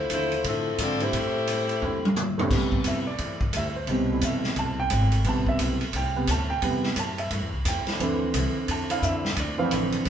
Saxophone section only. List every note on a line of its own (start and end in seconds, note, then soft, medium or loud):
0.00 0.12 A3 medium
0.00 0.12 E4 medium
0.00 0.12 F4 medium
0.00 0.12 C5 medium
0.13 0.44 A3 medium
0.13 0.44 E4 medium
0.13 0.44 F4 medium
0.13 0.44 C5 medium
0.48 0.81 F3 medium
0.48 0.81 C4 medium
0.48 0.81 E4 medium
0.48 0.81 A4 medium
0.82 1.02 C4 medium
0.82 1.02 F4 medium
0.82 1.02 A4 medium
0.82 1.02 D5 medium
1.03 2.18 A3 medium
1.03 2.18 E4 medium
1.03 2.17 G4 medium
1.03 2.18 C5 medium